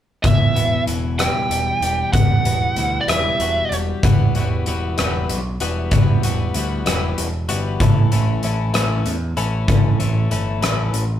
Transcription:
0.23 0.45 E1 medium
0.23 2.14 E2 medium
0.23 0.83 E5 medium
0.23 kick medium
0.23 closed hi-hat medium
0.56 0.76 E1 medium
0.56 2.14 B2 medium
0.56 closed hi-hat medium
0.87 1.28 E1 medium
0.87 2.45 E3 medium
0.87 closed hi-hat medium
1.19 1.81 G3 medium
1.19 2.10 G5 medium
1.19 cross-stick medium
1.19 closed hi-hat medium
1.49 1.70 E1 medium
1.49 closed hi-hat medium
1.81 2.02 E1 medium
1.81 3.08 G3 medium
1.81 closed hi-hat medium
2.13 2.34 E1 medium
2.13 3.72 E2 medium
2.13 3.04 F#5 medium
2.13 kick loud
2.13 closed hi-hat medium
2.44 2.65 E1 medium
2.44 4.03 B2 medium
2.44 closed hi-hat medium
2.76 2.97 D2 medium
2.76 4.02 E3 medium
2.76 closed hi-hat medium
3.01 3.08 D5 medium
3.07 3.28 E1 medium
3.07 3.71 G3 medium
3.07 3.75 E5 medium
3.07 cross-stick medium
3.07 closed hi-hat medium
3.40 3.60 E1 medium
3.40 4.04 F#4 medium
3.40 closed hi-hat medium
3.71 3.91 E1 medium
3.71 4.03 G3 medium
3.71 closed hi-hat medium
4.03 4.30 E1 medium
4.03 4.35 E3 medium
4.03 4.35 G3 medium
4.03 4.35 B3 medium
4.03 4.35 F#4 medium
4.03 kick loud
4.03 closed hi-hat medium
4.35 4.62 E1 medium
4.35 4.66 E3 medium
4.35 4.66 G3 medium
4.35 4.66 B3 medium
4.35 4.67 F#4 medium
4.35 closed hi-hat medium
4.66 4.94 E1 medium
4.66 4.98 E3 medium
4.66 4.98 G3 medium
4.66 4.98 B3 medium
4.66 4.97 F#4 medium
4.66 closed hi-hat medium
4.98 5.26 E1 medium
4.98 5.40 E3 medium
4.98 5.39 G3 medium
4.98 5.39 B3 medium
4.98 5.39 F#4 medium
4.98 cross-stick medium
4.98 closed hi-hat medium
5.29 5.57 B1 medium
5.29 closed hi-hat medium
5.60 5.88 E1 medium
5.60 5.91 E3 medium
5.60 5.91 G3 medium
5.60 5.92 B3 medium
5.60 5.92 F#4 medium
5.60 closed hi-hat medium
5.91 6.19 E1 medium
5.91 6.23 E3 medium
5.91 6.24 G3 medium
5.91 6.23 B3 medium
5.91 6.23 F#4 medium
5.91 kick loud
5.91 closed hi-hat medium
6.23 6.51 E1 medium
6.23 6.54 E3 medium
6.23 6.54 G3 medium
6.23 6.55 B3 medium
6.23 6.55 F#4 medium
6.23 closed hi-hat medium
6.54 6.82 D2 medium
6.54 6.87 E3 medium
6.54 6.86 G3 medium
6.54 6.86 B3 medium
6.54 6.85 F#4 medium
6.54 closed hi-hat medium
6.86 7.13 E1 medium
6.86 7.28 E3 medium
6.86 7.28 G3 medium
6.86 7.28 B3 medium
6.86 7.27 F#4 medium
6.86 cross-stick loud
6.86 closed hi-hat medium
7.18 7.45 E1 medium
7.18 closed hi-hat medium
7.49 7.76 G1 medium
7.49 7.79 E3 medium
7.49 7.81 G3 medium
7.49 7.81 B3 medium
7.49 7.80 F#4 medium
7.49 closed hi-hat medium
7.80 8.07 A1 medium
7.80 8.12 E3 medium
7.80 8.12 A3 medium
7.80 8.11 C#4 medium
7.80 8.11 E4 medium
7.80 kick loud
7.80 closed hi-hat medium
8.12 8.39 A1 medium
8.12 8.42 E3 medium
8.12 8.43 A3 medium
8.12 8.43 C#4 medium
8.12 8.43 E4 medium
8.12 closed hi-hat medium
8.43 8.71 A1 medium
8.43 8.74 E3 medium
8.43 8.74 A3 medium
8.43 8.73 C#4 medium
8.43 8.72 E4 medium
8.43 closed hi-hat medium
8.74 9.02 A1 medium
8.74 9.15 E3 medium
8.74 9.15 A3 medium
8.74 9.15 C#4 medium
8.74 9.15 E4 medium
8.74 cross-stick medium
8.74 closed hi-hat medium
9.06 9.33 E2 medium
9.06 closed hi-hat medium
9.37 9.64 A1 medium
9.37 9.67 E3 medium
9.37 9.67 A3 medium
9.37 9.67 C#4 medium
9.37 9.68 E4 medium
9.37 closed hi-hat medium
9.68 9.95 A1 medium
9.68 9.99 E3 medium
9.68 9.99 A3 medium
9.68 9.98 C#4 medium
9.68 9.98 E4 medium
9.68 kick loud
9.68 closed hi-hat medium
9.99 10.26 A1 medium
9.99 10.30 E3 medium
9.99 10.30 A3 medium
9.99 10.31 C#4 medium
9.99 10.31 E4 medium
9.99 closed hi-hat medium
10.31 10.58 G1 medium
10.31 10.62 E3 medium
10.31 10.62 A3 medium
10.31 10.61 C#4 medium
10.31 10.61 E4 medium
10.31 closed hi-hat medium
10.61 10.89 A1 medium
10.61 11.03 E3 medium
10.61 11.03 A3 medium
10.61 11.03 C#4 medium
10.61 11.03 E4 medium
10.61 cross-stick loud
10.61 closed hi-hat medium
10.93 11.20 A1 medium
10.93 closed hi-hat medium

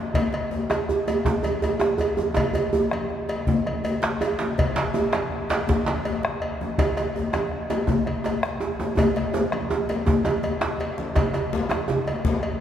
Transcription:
0.14 bombo low loud
0.14 cowbell medium
0.14 djembe bass medium
0.14 low conga medium
0.33 cowbell soft
0.33 djembe slap soft
0.51 djembe tone medium
0.70 bombo rim medium
0.70 cowbell soft
0.70 djembe tone loud
0.70 high conga medium
0.88 bombo rim soft
0.88 djembe bass medium
1.08 cowbell soft
1.08 djembe slap medium
1.08 djembe tone medium
1.08 djembe bass medium
1.25 bombo rim soft
1.25 bombo low medium
1.25 djembe tone loud
1.25 high conga soft
1.25 djembe bass medium
1.25 low conga medium
1.43 cowbell soft
1.43 high conga medium
1.43 djembe bass medium
1.62 cowbell soft
1.62 djembe tone medium
1.62 djembe bass medium
1.80 bombo rim medium
1.80 djembe slap medium
1.80 djembe tone loud
1.80 high conga soft
1.98 cowbell soft
1.98 djembe bass medium
2.17 bombo rim soft
2.17 djembe tone medium
2.17 high conga medium
2.17 djembe bass medium
2.34 bombo low medium
2.34 cowbell medium
2.34 djembe slap soft
2.34 djembe tone loud
2.34 djembe bass medium
2.34 low conga medium
2.53 cowbell soft
2.53 djembe slap medium
2.53 djembe bass medium
2.73 djembe tone medium
2.73 djembe bass medium
2.91 bombo rim medium
2.91 cowbell soft
2.91 high conga medium
3.10 bombo rim soft
3.10 djembe slap soft
3.29 cowbell soft
3.29 djembe slap medium
3.29 high conga soft
3.47 bombo low medium
3.47 djembe bass medium
3.47 low conga medium
3.66 bombo rim soft
3.66 cowbell soft
3.66 high conga medium
3.84 cowbell soft
3.84 djembe tone medium
4.02 bombo rim medium
4.02 djembe slap medium
4.21 cowbell medium
4.21 djembe tone medium
4.21 high conga soft
4.39 djembe slap medium
4.39 djembe tone medium
4.39 high conga medium
4.58 bombo low loud
4.58 cowbell medium
4.58 djembe slap soft
4.58 djembe bass medium
4.58 low conga medium
4.76 cowbell soft
4.76 djembe slap medium
4.76 djembe slap loud
4.94 djembe tone medium
5.13 bombo rim medium
5.13 cowbell medium
5.13 djembe slap medium
5.13 high conga medium
5.31 bombo rim soft
5.31 djembe slap soft
5.49 cowbell soft
5.49 djembe slap medium
5.49 djembe slap loud
5.49 djembe tone medium
5.49 high conga soft
5.68 bombo low loud
5.68 djembe tone medium
5.68 djembe bass medium
5.68 low conga medium
5.86 bombo rim soft
5.86 cowbell soft
5.86 djembe slap medium
5.86 high conga medium
6.05 cowbell soft
6.05 djembe tone medium
6.23 bombo rim medium
6.23 djembe slap medium
6.42 cowbell medium
6.61 djembe tone medium
6.61 high conga medium
6.78 bombo low loud
6.78 cowbell medium
6.78 djembe slap soft
6.78 djembe tone medium
6.78 djembe bass medium
6.78 low conga medium
6.97 cowbell soft
6.97 djembe slap medium
6.97 djembe tone medium
7.16 djembe tone medium
7.33 bombo rim medium
7.33 cowbell soft
7.33 djembe tone medium
7.33 high conga medium
7.51 bombo rim soft
7.51 djembe slap soft
7.70 cowbell soft
7.70 djembe slap medium
7.70 djembe tone medium
7.70 high conga soft
7.87 bombo low medium
7.87 djembe tone medium
7.87 djembe bass medium
7.87 low conga medium
8.06 bombo rim soft
8.06 cowbell soft
8.06 high conga medium
8.24 cowbell soft
8.24 djembe tone medium
8.43 bombo rim medium
8.43 djembe slap medium
8.60 djembe tone medium
8.60 high conga soft
8.80 djembe tone medium
8.80 high conga medium
8.80 djembe tone medium
8.97 bombo low loud
8.97 cowbell medium
8.97 djembe tone loud
8.97 low conga medium
8.97 djembe bass medium
9.16 bombo rim soft
9.16 cowbell soft
9.16 djembe slap medium
9.34 djembe slap soft
9.34 djembe tone medium
9.34 djembe tone loud
9.34 high conga soft
9.52 bombo rim medium
9.52 cowbell soft
9.52 high conga medium
9.70 djembe tone loud
9.89 cowbell soft
9.89 djembe slap medium
9.89 djembe tone medium
10.06 bombo low medium
10.06 djembe tone loud
10.06 djembe bass medium
10.06 low conga medium
10.25 bombo rim soft
10.25 cowbell soft
10.25 djembe tone loud
10.25 high conga medium
10.43 cowbell soft
10.43 djembe slap soft
10.43 djembe tone medium
10.43 high conga soft
10.61 bombo rim medium
10.61 djembe slap medium
10.61 djembe bass soft
10.80 cowbell soft
10.80 djembe slap medium
10.98 bombo rim soft
10.98 djembe slap medium
10.98 high conga medium
11.15 bombo rim soft
11.15 bombo low medium
11.15 cowbell medium
11.15 djembe slap soft
11.15 djembe tone loud
11.15 djembe bass medium
11.15 low conga medium
11.34 cowbell soft
11.34 djembe slap soft
11.34 djembe tone medium
11.53 djembe slap medium
11.53 djembe tone medium
11.53 high conga soft
11.69 bombo rim medium
11.69 cowbell soft
11.69 djembe tone loud
11.69 high conga medium
11.88 bombo rim soft
11.88 djembe tone medium
11.88 low conga medium
12.07 cowbell soft
12.07 djembe tone medium
12.25 bombo low loud
12.25 djembe slap medium
12.25 djembe bass medium
12.43 cowbell soft
12.43 djembe slap soft
12.43 high conga medium

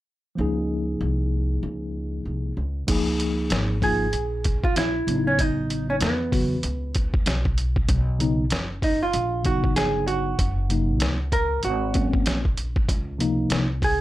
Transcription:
0.35 0.98 C#2 medium
0.35 2.52 F3 medium
0.35 2.53 A#3 medium
0.35 2.54 D#4 medium
0.41 2.54 G#4 medium
1.01 1.60 C2 medium
1.63 2.22 C#2 medium
2.25 2.55 C2 medium
2.57 2.87 C#2 medium
2.87 3.48 C#2 medium
2.87 3.76 F3 medium
2.87 3.77 A#3 medium
2.87 3.77 D#4 medium
2.87 3.78 G#4 medium
2.87 kick loud
2.87 closed hi-hat medium
2.87 crash medium
3.20 closed hi-hat medium
3.50 4.10 G#1 medium
3.50 snare loud
3.50 closed hi-hat medium
3.81 4.05 F3 medium
3.81 4.06 A#3 medium
3.81 4.06 D#4 medium
3.81 4.06 F4 medium
3.81 4.66 G#4 medium
3.81 kick medium
3.81 open hi-hat soft
4.13 4.73 A#1 medium
4.13 closed hi-hat medium
4.44 kick medium
4.44 closed hi-hat medium
4.64 4.76 F4 medium
4.64 kick loud
4.76 5.06 A#1 medium
4.76 5.27 E4 medium
4.76 snare loud
4.76 closed hi-hat medium
5.07 5.97 A1 medium
5.07 6.08 C#3 medium
5.07 6.08 F#3 medium
5.07 6.09 B3 medium
5.07 5.16 D4 medium
5.07 closed hi-hat medium
5.16 6.13 D#4 medium
5.27 5.40 C#4 medium
5.39 5.89 D#4 medium
5.39 kick loud
5.39 closed hi-hat medium
5.70 closed hi-hat medium
5.90 5.95 C#4 medium
6.01 6.60 E2 medium
6.01 7.23 B3 medium
6.01 snare loud
6.01 closed hi-hat medium
6.31 6.55 C#3 medium
6.31 6.56 F#3 medium
6.31 6.56 B3 medium
6.31 6.57 F#4 medium
6.31 kick medium
6.31 open hi-hat soft
6.63 7.23 C#2 medium
6.63 closed hi-hat medium
6.95 kick medium
6.95 closed hi-hat medium
7.14 kick medium
7.26 7.85 B1 medium
7.26 snare loud
7.26 closed hi-hat medium
7.45 kick medium
7.58 closed hi-hat medium
7.76 kick medium
7.89 8.48 B1 loud
7.89 kick loud
7.89 closed hi-hat medium
8.19 8.43 C#3 medium
8.19 8.43 F#3 medium
8.19 8.44 B3 medium
8.19 8.44 D#4 medium
8.19 closed hi-hat medium
8.50 9.10 F#1 medium
8.50 snare loud
8.50 closed hi-hat medium
8.82 9.00 D#4 medium
8.82 kick medium
8.82 open hi-hat soft
9.03 9.46 F4 medium
9.13 9.73 A#1 medium
9.13 closed hi-hat medium
9.44 10.33 C#3 medium
9.44 10.33 F#3 medium
9.44 10.34 B3 medium
9.44 10.34 D#4 medium
9.44 9.74 F#4 medium
9.44 kick medium
9.44 closed hi-hat medium
9.64 kick medium
9.76 10.36 G1 medium
9.76 10.07 G#4 medium
9.76 snare loud
9.76 closed hi-hat medium
10.07 11.32 F#4 medium
10.07 closed hi-hat medium
10.39 11.01 F#1 loud
10.39 kick medium
10.39 closed hi-hat medium
10.69 11.15 C3 medium
10.69 11.16 F#3 medium
10.69 11.16 A#3 medium
10.69 11.17 D#4 medium
10.69 closed hi-hat medium
11.00 11.60 C#2 medium
11.00 snare loud
11.00 closed hi-hat medium
11.32 11.64 A#4 medium
11.32 kick medium
11.32 closed hi-hat medium
11.63 12.23 G#1 medium
11.63 12.23 F#4 medium
11.63 closed hi-hat medium
11.94 12.40 F#3 medium
11.94 12.41 A#3 medium
11.94 12.40 C4 medium
11.94 12.41 C#4 medium
11.94 kick medium
11.94 closed hi-hat medium
12.13 kick medium
12.26 12.85 A#1 medium
12.26 snare loud
12.26 closed hi-hat medium
12.45 kick medium
12.57 closed hi-hat medium
12.76 kick medium
12.89 13.48 C#2 loud
12.89 kick loud
12.89 closed hi-hat medium
13.18 13.65 C3 medium
13.18 13.65 F3 medium
13.18 13.66 A#3 medium
13.18 13.66 D#4 medium
13.18 closed hi-hat medium
13.50 14.01 C2 medium
13.50 snare loud
13.50 closed hi-hat medium
13.82 14.01 G#4 medium
13.82 kick medium
13.82 open hi-hat soft

